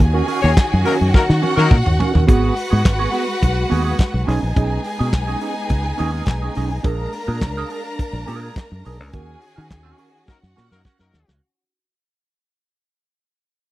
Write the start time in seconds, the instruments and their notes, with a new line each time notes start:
Already playing: violin section G#5
0.00 fingered electric bass D#2, string section D#3 C#4 F#4, violin section G#4, muted clean electric guitar stroke, kick
0.14 clean electric guitar C#4 F#4 A#4
0.28 clean electric guitar C#4 F#4 A#4, open hi-hat
0.41 fingered electric bass D#2, horn section A#3 C#4 F#4 C#5, muted clean electric guitar stroke
0.57 kick, snare, clap, closed hi-hat
0.70 fingered electric bass F#2, muted clean electric guitar stroke
0.84 horn section F#3 A#3 D#4 A#4, clean electric guitar C#4 F#4 A#4, open hi-hat
0.99 fingered electric bass F#2, muted clean electric guitar stroke
1.12 horn section F#3 A#3 D#4 A#4, violin section F#4 F#5, muted clean electric guitar stroke, kick, snare
1.28 fingered electric bass D#3, muted clean electric guitar stroke, snare
1.42 clean electric guitar C#4 F#4 A#4, high tom
1.56 fingered electric bass D#3, horn section F#3 A#3 D#4 A#4, clean electric guitar C#4 F#4 A#4, high tom
1.71 fingered electric bass A#2, kick, mid tom
1.85 fingered electric bass D#2, muted clean electric guitar stroke, mid tom
1.99 clean electric guitar C#4 F#4 A#4, floor tom
2.14 fingered electric bass D#2, clean electric guitar C#4 F#4 A#4, floor tom
2.27 fingered electric bass G#1, string section G#3 F#4 B4, clean electric guitar B3 F#4 G#4, violin section F#4 F#5, kick, closed hi-hat
2.57 open hi-hat
2.70 fingered electric bass G#2, clean electric guitar B3 F#4 G#4
2.85 fingered electric bass G#1, kick, snare, clap, closed hi-hat
2.99 clean electric guitar B3 F#4 G#4
3.12 clean electric guitar B3 F#4 G#4, open hi-hat
3.27 muted clean electric guitar stroke
3.41 fingered electric bass B1, muted clean electric guitar stroke, kick, closed hi-hat
3.55 muted clean electric guitar stroke
3.69 fingered electric bass D#2, clean electric guitar B3 F#4 G#4, open hi-hat
3.84 clean electric guitar B3 F#4 G#4
3.99 kick, snare, clap, closed hi-hat
4.12 fingered electric bass B1, muted clean electric guitar stroke
4.27 fingered electric bass B1, string section G#3 B3 D#4, clean electric guitar C#4 D#4 G#4, violin section G#4 G#5, snare, open hi-hat
4.43 fingered electric bass A#1
4.56 fingered electric bass B1, clean electric guitar C#4 D#4 G#4, kick, closed hi-hat
4.84 muted clean electric guitar stroke, open hi-hat
4.99 fingered electric bass B2, clean electric guitar C#4 D#4 G#4
5.13 fingered electric bass B1, kick, snare, clap, closed hi-hat
5.27 clean electric guitar C#4 D#4 G#4
5.41 clean electric guitar C#4 D#4 G#4, open hi-hat
5.57 muted clean electric guitar stroke
5.69 fingered electric bass C#2, muted clean electric guitar stroke, kick, closed hi-hat
5.84 muted clean electric guitar stroke
5.98 fingered electric bass D#2, clean electric guitar C#4 D#4 G#4, open hi-hat
6.12 clean electric guitar C#4 D#4 G#4
6.26 fingered electric bass B1, muted clean electric guitar stroke, kick, snare, clap, closed hi-hat
6.42 clean electric guitar C#4 D#4 G#4
6.55 fingered electric bass B1, clean electric guitar C#4 D#4 G#4, snare, open hi-hat
6.71 muted clean electric guitar stroke
6.83 fingered electric bass A#1, string section A#3 D4, clean electric guitar D4 G#4 A#4, violin section A#4 A#5, kick, closed hi-hat
7.13 muted clean electric guitar stroke, open hi-hat
7.27 fingered electric bass A#2, clean electric guitar D4 G#4 A#4
7.41 fingered electric bass C#2, kick, snare, clap, closed hi-hat
7.57 clean electric guitar D4 G#4 A#4
7.70 clean electric guitar D4 G#4 A#4, open hi-hat
7.86 muted clean electric guitar stroke
7.99 muted clean electric guitar stroke, kick, closed hi-hat
8.13 fingered electric bass A#1, muted clean electric guitar stroke
8.26 fingered electric bass A#2, clean electric guitar D4 G#4 A#4, open hi-hat
8.43 clean electric guitar D4 G#4
8.56 kick, snare, clap, closed hi-hat
8.71 fingered electric bass F#2, muted clean electric guitar stroke
8.85 fingered electric bass B1, clean electric guitar D4 G#4 A#4, open hi-hat
9.00 fingered electric bass C#2
9.13 fingered electric bass D#2, string section D#3 C#4 F#4, clean electric guitar C#4 F#4 A#4, violin section G#4 G#5, kick, closed hi-hat
9.42 muted clean electric guitar stroke, open hi-hat
9.56 fingered electric bass D#3, clean electric guitar C#4 F#4 A#4
9.71 fingered electric bass D#2, kick, snare, clap, closed hi-hat
9.83 clean electric guitar C#4 F#4 A#4
9.98 clean electric guitar C#4 F#4 A#4, open hi-hat
10.12 muted clean electric guitar stroke
10.26 horn section F#3 A#3 D#4 A#4, violin section F#4 F#5, muted clean electric guitar stroke, kick, snare
10.43 fingered electric bass F#2, muted clean electric guitar stroke, snare
10.56 fingered electric bass A#2, clean electric guitar C#4 F#4 A#4, snare
10.70 fingered electric bass F#2, horn section F#3 A#3 D#4 A#4, clean electric guitar C#4 F#4 A#4, snare
10.85 clean electric guitar C#4 F#4 A#4, kick, snare
10.99 fingered electric bass F#2, horn section F#3 A#3 D#4 A#4, muted clean electric guitar stroke, snare
11.14 fingered electric bass D#2, muted clean electric guitar stroke, snare
11.28 fingered electric bass C#2, clean electric guitar C#4 F#4 A#4, snare